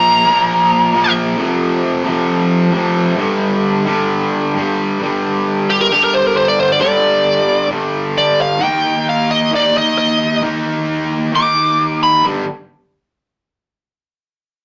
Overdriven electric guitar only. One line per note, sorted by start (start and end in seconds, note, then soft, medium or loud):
0.00 0.24 A#2 medium
0.00 0.27 F3 loud
0.00 0.24 A#3 loud
0.25 0.92 A#2 medium
0.25 0.93 F3 medium
0.25 0.92 A#3 loud
0.93 1.37 A#2 medium
0.93 1.38 F3 medium
0.93 1.38 A#3 medium
1.36 2.04 F2 loud
1.36 2.04 C3 loud
1.36 2.03 F3 loud
2.04 2.71 F2 medium
2.04 2.72 C3 medium
2.04 2.71 F3 medium
2.72 3.16 F2 medium
2.72 3.18 C3 medium
2.72 3.18 F3 medium
3.17 3.84 G2 loud
3.17 3.85 D3 loud
3.21 3.84 G3 loud
3.85 4.53 G2 medium
3.85 4.53 D3 medium
3.85 4.52 G3 medium
4.55 4.98 G2 medium
4.55 4.99 D3 medium
4.59 5.00 G3 medium
5.00 5.89 G2 medium
5.00 5.90 D3 medium
5.00 5.93 G3 medium
5.90 6.79 G2 medium
5.90 6.80 D3 medium
5.90 6.83 G3 medium
6.80 7.68 G2 medium
6.80 7.70 D3 medium
6.80 7.73 G3 medium
7.69 8.59 G2 medium
7.69 8.59 D3 medium
7.69 8.61 G3 medium
8.59 9.51 D#3 medium
8.59 9.52 A#3 medium
8.59 9.54 D#4 medium
9.51 10.41 D#3 medium
9.51 10.41 A#3 medium
9.51 10.42 D#4 medium
10.42 11.31 D#3 medium
10.42 11.32 A#3 medium
10.42 11.33 D#4 medium
11.32 12.22 D#3 medium
11.32 12.23 A#3 medium
11.32 12.24 D#4 medium
12.24 12.42 G2 medium
12.24 12.42 D3 loud
12.24 12.43 G3 loud